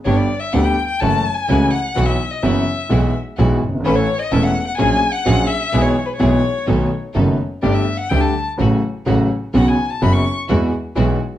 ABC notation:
X:1
M:4/4
L:1/16
Q:1/4=127
K:E
V:1 name="Violin"
c =d2 e f =g2 g a3 ^g3 f2- | f e2 d e6 z6 | B c2 d e f2 f g3 f3 e2- | e c2 B c6 z6 |
=d e2 f =g a2 z8 z | f g2 a b c'2 z8 z |]
V:2 name="String section"
[B,=D=G]2 z2 [B,DG]2 z2 [A,EF]2 z2 [A,EF]2 z2 | [B,EF]2 z2 [B,EF]2 z2 [G,EF]2 z2 [G,EF]2 z2 | [CEA]2 z2 [CEA]2 z2 [^A,FG]2 z2 [A,FG]2 z2 | [B,EG]2 z2 [B,EG]2 z2 [B,DA]2 z2 [B,DA]2 z2 |
[A,=D=G]2 z2 [A,DG]2 z2 [A,CF]2 z2 [A,CF]2 z2 | [B,CF]2 z2 [B,CF]2 z2 [G,EF]2 z2 [G,EF]2 z2 |]
V:3 name="Grand piano" clef=bass
[=G,,,=G,,=D,=G,B,=G]2 z2 [=D,,D,G,B,G]2 z2 [F,,E,F,A,CF]2 z2 [C,,C,E,A,CF]2 z2 | [B,,,B,,E,F,B,F]2 z2 [F,,,F,,E,F,B,F]2 z2 [B,,,B,,E,G,B,F]2 z2 [B,,,B,,E,G,B,F]2 z/2 F,,,/2 =G,,,/2 ^G,,,/2 | [A,,,A,,E,A,CA]2 z2 [E,,,E,,E,A,CA]2 z2 [^A,,,^A,,F,^A,CG]2 z2 [A,,,A,,F,A,CG]2 z2 | [B,,,B,,E,G,B,G]2 z2 [B,,,B,,E,G,B,G]2 z2 [B,,,B,,D,A,B,F]2 z2 [F,,,F,,D,A,B,F]2 z2 |
[=G,,,=G,,=D,=G,A,=G]2 z2 [=D,,D,G,A,G]2 z2 [A,,,A,,C,F,A,F]2 z2 [A,,,A,,C,F,A,F]2 z2 | [B,,,B,,C,F,B,F]2 z2 [F,,,F,,C,F,B,F]2 z2 [E,,E,G,B,F]2 z2 [B,,,B,,E,G,B,F]2 z2 |]
V:4 name="Double bass" clef=bass
=G,,,2 z2 =D,,2 z2 F,,,2 z2 C,,2 z2 | B,,,2 z2 F,,,2 z2 B,,,2 z2 B,,,2 =G,,,2 | A,,,2 z2 E,,,2 z2 ^A,,,2 z2 A,,,2 z2 | B,,,2 z2 B,,,2 z2 B,,,2 z2 F,,,2 z2 |
=G,,,2 z2 =D,,2 z2 A,,,2 z2 A,,,2 z2 | B,,,2 z2 F,,,2 z2 E,,2 z2 B,,,2 z2 |]